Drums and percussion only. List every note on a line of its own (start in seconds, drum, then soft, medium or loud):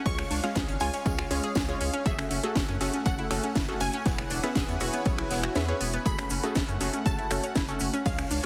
0.06 kick loud
0.06 closed hi-hat medium
0.06 open hi-hat medium
0.19 finger snap medium
0.19 closed hi-hat soft
0.31 open hi-hat loud
0.31 tambourine medium
0.43 snare medium
0.43 closed hi-hat medium
0.55 kick loud
0.55 snare loud
0.55 closed hi-hat medium
0.55 tambourine medium
0.68 closed hi-hat soft
0.80 open hi-hat loud
0.80 tambourine medium
0.94 closed hi-hat medium
0.94 closed hi-hat soft
1.06 kick loud
1.06 closed hi-hat medium
1.06 tambourine medium
1.19 finger snap medium
1.19 closed hi-hat soft
1.31 open hi-hat loud
1.31 tambourine medium
1.44 closed hi-hat medium
1.55 kick loud
1.55 snare loud
1.55 closed hi-hat medium
1.55 tambourine medium
1.69 closed hi-hat soft
1.81 open hi-hat loud
1.81 tambourine medium
1.94 closed hi-hat medium
2.06 kick loud
2.06 closed hi-hat medium
2.06 tambourine loud
2.19 finger snap medium
2.19 closed hi-hat soft
2.31 open hi-hat loud
2.31 tambourine medium
2.44 closed hi-hat medium
2.56 kick loud
2.56 snare loud
2.56 closed hi-hat medium
2.56 tambourine medium
2.69 closed hi-hat soft
2.80 snare soft
2.80 open hi-hat loud
2.80 tambourine medium
2.94 closed hi-hat medium
3.06 kick loud
3.06 closed hi-hat medium
3.06 tambourine medium
3.19 closed hi-hat soft
3.31 finger snap medium
3.31 open hi-hat loud
3.31 tambourine medium
3.44 closed hi-hat medium
3.55 kick loud
3.55 snare loud
3.55 closed hi-hat medium
3.55 tambourine medium
3.68 closed hi-hat soft
3.80 snare loud
3.80 open hi-hat loud
3.80 tambourine medium
3.93 closed hi-hat medium
4.06 kick loud
4.06 snare loud
4.06 closed hi-hat medium
4.06 tambourine medium
4.18 finger snap medium
4.18 closed hi-hat soft
4.30 open hi-hat loud
4.30 tambourine medium
4.43 snare medium
4.43 closed hi-hat medium
4.55 kick loud
4.55 snare loud
4.55 closed hi-hat medium
4.55 tambourine medium
4.68 closed hi-hat soft
4.80 open hi-hat loud
4.80 tambourine medium
4.93 closed hi-hat soft
4.93 closed hi-hat medium
5.05 kick loud
5.05 closed hi-hat medium
5.05 tambourine medium
5.18 finger snap medium
5.18 closed hi-hat soft
5.31 snare loud
5.31 open hi-hat loud
5.31 tambourine medium
5.43 finger snap medium
5.43 closed hi-hat medium
5.55 snare loud
5.55 snare soft
5.55 closed hi-hat medium
5.55 tambourine medium
5.68 closed hi-hat soft
5.81 open hi-hat loud
5.81 tambourine medium
5.94 closed hi-hat medium
6.06 kick loud
6.06 closed hi-hat medium
6.06 tambourine medium
6.06 shaker medium
6.18 finger snap medium
6.18 closed hi-hat soft
6.18 shaker soft
6.30 open hi-hat loud
6.30 tambourine medium
6.30 shaker loud
6.43 closed hi-hat medium
6.43 shaker soft
6.55 kick loud
6.55 snare loud
6.55 closed hi-hat medium
6.55 tambourine medium
6.55 shaker soft
6.68 closed hi-hat soft
6.68 shaker soft
6.80 snare soft
6.80 open hi-hat loud
6.80 tambourine medium
6.80 shaker medium
6.93 closed hi-hat medium
6.93 shaker soft
7.06 kick loud
7.06 closed hi-hat medium
7.06 tambourine medium
7.06 shaker medium
7.19 closed hi-hat soft
7.31 finger snap medium
7.31 open hi-hat loud
7.31 tambourine medium
7.31 shaker loud
7.43 closed hi-hat medium
7.43 shaker soft
7.55 kick loud
7.55 snare loud
7.55 closed hi-hat medium
7.55 tambourine medium
7.55 shaker soft
7.68 closed hi-hat soft
7.68 shaker soft
7.80 open hi-hat loud
7.80 tambourine medium
7.80 shaker medium
7.94 closed hi-hat medium
7.94 shaker soft
8.06 kick loud
8.06 closed hi-hat medium
8.06 open hi-hat medium
8.06 shaker medium
8.18 finger snap medium
8.18 closed hi-hat soft
8.18 shaker soft
8.31 open hi-hat loud
8.31 tambourine medium
8.31 shaker loud